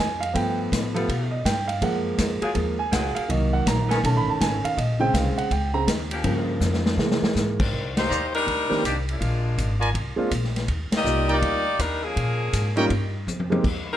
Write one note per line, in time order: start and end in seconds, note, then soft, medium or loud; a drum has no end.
0.00 0.34 F2 medium
0.00 0.21 G#5 medium
0.20 0.34 F5 medium
0.20 ride soft
0.33 0.70 G2 medium
0.33 0.91 F3 soft
0.33 0.92 A3 soft
0.33 0.92 B3 medium
0.33 0.58 G5 medium
0.33 kick soft
0.33 ride medium
0.72 1.07 A2 medium
0.72 kick soft
0.72 snare medium
0.72 hi-hat pedal medium
0.72 ride medium
0.94 1.06 F3 soft
0.94 1.42 G3 loud
0.94 1.07 A3 soft
0.94 1.42 B3 medium
0.94 1.07 B3 soft
0.94 1.42 F4 medium
0.94 1.42 A4 loud
0.94 ride soft
1.08 1.44 B2 medium
1.08 kick soft
1.08 ride medium
1.31 1.44 D#5 medium
1.45 1.81 G2 medium
1.45 1.68 G5 medium
1.45 kick soft
1.45 snare medium
1.45 hi-hat pedal medium
1.45 ride medium
1.68 1.81 F5 medium
1.68 ride soft
1.82 2.17 F#2 medium
1.82 2.39 F3 soft
1.82 2.39 G#3 soft
1.82 2.40 A#3 soft
1.82 1.97 F#5 medium
1.82 kick soft
1.82 ride medium
2.18 2.40 F2 medium
2.18 kick soft
2.18 snare medium
2.18 hi-hat pedal medium
2.18 ride medium
2.41 2.51 F#3 loud
2.41 2.51 A#3 medium
2.41 2.51 F4 medium
2.41 2.51 G#4 loud
2.41 muted upright bass stroke soft
2.41 ride soft
2.54 2.91 D#2 medium
2.54 2.76 F3 soft
2.54 2.76 G#3 soft
2.54 2.76 A#3 soft
2.54 kick soft
2.54 ride medium
2.79 2.92 G#5 medium
2.92 3.14 C#2 medium
2.92 3.29 F#3 medium
2.92 3.29 A#3 medium
2.92 3.29 F4 medium
2.92 3.29 G#4 loud
2.92 3.15 F#5 medium
2.92 kick soft
2.92 snare medium
2.92 hi-hat pedal medium
2.92 ride medium
3.15 3.28 F5 medium
3.15 muted upright bass stroke soft
3.15 ride soft
3.28 3.65 C2 medium
3.28 3.99 D#3 soft
3.28 3.99 F#3 soft
3.28 4.00 A#3 soft
3.28 3.52 D#5 medium
3.28 kick soft
3.28 ride medium
3.53 3.66 F#5 medium
3.66 4.02 A#1 medium
3.66 3.90 A#5 medium
3.66 kick soft
3.66 snare medium
3.66 hi-hat pedal medium
3.66 ride medium
3.89 3.99 D#3 loud
3.89 3.98 B3 medium
3.89 3.99 C#4 medium
3.89 3.98 A4 loud
3.89 4.03 G#5 medium
3.89 snare soft
3.89 ride soft
4.03 4.15 B1 loud
4.03 4.74 D#3 soft
4.03 4.74 A3 soft
4.03 4.74 C#4 medium
4.03 4.16 A5 medium
4.03 kick soft
4.03 ride medium
4.15 4.27 A1 medium
4.15 4.28 B5 medium
4.28 4.39 F#1 medium
4.28 4.41 A5 medium
4.40 4.62 G#1 medium
4.40 4.63 G#5 medium
4.40 kick soft
4.40 snare medium
4.40 hi-hat pedal medium
4.40 ride medium
4.63 4.77 F5 medium
4.63 muted upright bass stroke soft
4.63 ride medium
4.77 5.13 A#1 medium
4.77 5.00 D#5 medium
4.77 kick soft
4.77 ride medium
5.00 5.48 C#3 medium
5.00 5.48 G#3 soft
5.00 5.49 C4 medium
5.00 5.13 G5 loud
5.14 5.36 C2 medium
5.14 5.37 F5 medium
5.14 kick soft
5.14 snare medium
5.14 hi-hat pedal medium
5.14 ride medium
5.37 5.51 F#5 medium
5.37 muted upright bass stroke soft
5.37 ride soft
5.51 5.87 C#2 medium
5.51 5.74 G5 medium
5.51 kick soft
5.51 ride medium
5.74 5.86 C#3 soft
5.74 5.86 G#3 soft
5.74 5.87 C4 soft
5.74 5.82 A#5 loud
5.88 6.23 D#2 loud
5.88 kick soft
5.88 snare medium
5.88 hi-hat pedal medium
5.88 ride medium
6.11 6.59 F3 medium
6.11 6.59 A#3 medium
6.11 6.59 C#4 medium
6.11 6.59 G4 loud
6.11 ride medium
6.24 6.60 G2 medium
6.24 6.94 C#3 soft
6.24 6.95 F3 soft
6.24 6.95 A#3 medium
6.24 kick soft
6.24 ride medium
6.60 6.96 F2 medium
6.60 snare soft
6.60 hi-hat pedal medium
6.73 snare medium
6.86 snare medium
6.97 7.20 C3 medium
6.97 7.56 E3 soft
6.97 7.56 G#3 soft
6.97 7.56 A#3 soft
6.97 snare medium
7.11 snare medium
7.22 muted upright bass stroke soft
7.22 snare medium
7.35 7.71 G#2 medium
7.35 snare medium
7.35 hi-hat pedal medium
7.59 8.07 D#3 medium
7.59 8.07 C4 medium
7.59 8.07 D4 medium
7.59 8.07 A#4 loud
7.59 kick medium
7.59 crash medium
7.73 8.08 C2 medium
7.73 kick soft
7.97 8.31 A#3 medium
7.97 8.31 D#4 medium
7.97 8.32 G4 medium
7.97 8.32 C5 medium
7.97 snare medium
7.97 ride medium
8.08 8.46 D#2 medium
8.08 8.24 D#4 medium
8.08 8.25 C5 medium
8.08 8.24 D5 medium
8.08 8.25 A#5 medium
8.08 hi-hat pedal medium
8.34 8.81 G3 medium
8.34 8.81 D4 medium
8.34 8.81 D#4 medium
8.34 8.81 A#4 loud
8.34 ride soft
8.47 8.68 D2 medium
8.47 kick soft
8.47 ride soft
8.69 8.82 D#3 medium
8.69 8.82 A#3 medium
8.69 8.82 C4 medium
8.69 8.82 D4 medium
8.69 8.82 G4 medium
8.69 muted upright bass stroke soft
8.69 snare soft
8.84 9.20 C2 medium
8.84 8.96 D#3 medium
8.84 8.96 A#3 medium
8.84 8.96 D4 medium
8.84 8.96 G4 medium
8.84 kick soft
8.84 hi-hat pedal soft
8.84 ride medium
9.09 9.79 G#3 medium
9.09 9.79 A#3 medium
9.09 9.79 D4 medium
9.09 9.79 F4 medium
9.09 ride soft
9.21 9.57 A#1 medium
9.21 kick soft
9.21 ride medium
9.58 9.93 G#1 medium
9.58 kick soft
9.58 hi-hat pedal soft
9.58 ride medium
9.80 9.89 F4 medium
9.80 9.89 A#4 medium
9.80 9.89 D5 medium
9.80 9.89 G#5 medium
9.80 ride soft
9.94 10.16 C2 medium
9.94 kick soft
9.94 ride medium
10.16 10.29 G#3 medium
10.16 10.30 A#3 medium
10.16 10.30 C4 medium
10.16 10.30 D4 medium
10.16 10.30 F4 medium
10.16 muted upright bass stroke soft
10.31 10.67 A#1 medium
10.31 kick soft
10.31 hi-hat pedal medium
10.31 ride medium
10.44 snare soft
10.56 snare soft
10.56 ride soft
10.68 10.90 D#2 medium
10.68 kick soft
10.68 ride medium
10.91 muted upright bass stroke soft
10.91 snare medium
10.91 ride medium
10.96 11.29 A#3 medium
10.96 11.29 G4 medium
10.96 11.29 D5 medium
10.96 11.29 D#5 loud
11.03 11.41 C2 medium
11.03 11.60 G3 soft
11.03 11.60 A#3 soft
11.03 11.61 D#4 soft
11.03 11.61 F4 medium
11.03 11.61 D5 soft
11.03 hi-hat pedal soft
11.28 11.37 D#4 medium
11.28 11.37 A#4 medium
11.28 11.37 D5 medium
11.28 11.37 G5 medium
11.28 ride soft
11.32 11.81 A#3 medium
11.32 11.80 D#4 medium
11.32 11.81 G4 medium
11.32 11.81 D5 loud
11.42 11.78 D2 medium
11.42 kick soft
11.42 ride medium
11.79 12.15 D#2 medium
11.79 12.04 G3 medium
11.79 12.04 D4 medium
11.79 12.04 D#4 medium
11.79 12.04 A#4 medium
11.79 kick soft
11.79 hi-hat pedal medium
11.79 ride medium
12.04 12.78 F3 medium
12.04 12.77 A#3 medium
12.04 12.78 C#4 medium
12.04 12.77 G#4 medium
12.16 12.52 A#2 medium
12.16 kick soft
12.16 ride medium
12.53 12.89 G#2 medium
12.53 kick soft
12.53 hi-hat pedal medium
12.53 ride medium
12.76 12.88 G3 medium
12.76 12.89 A#3 medium
12.76 12.89 C#4 medium
12.76 12.85 D#4 medium
12.76 12.89 D#4 medium
12.76 12.89 F4 medium
12.76 12.85 A#4 medium
12.76 12.85 C#5 medium
12.76 12.85 G5 medium
12.76 ride soft
12.90 13.26 G2 medium
12.90 kick soft
12.90 ride medium
13.27 13.63 F2 medium
13.27 hi-hat pedal soft
13.27 high tom soft
13.40 high tom medium
13.50 13.62 G#3 medium
13.50 13.62 A#3 medium
13.50 13.63 C4 medium
13.50 13.63 D#4 medium
13.50 13.63 G4 medium
13.50 high tom medium
13.64 13.97 D#2 medium
13.64 kick medium
13.64 crash medium
13.92 13.97 G3 medium
13.92 13.97 C4 medium
13.92 13.97 D#4 medium
13.92 13.97 A#4 medium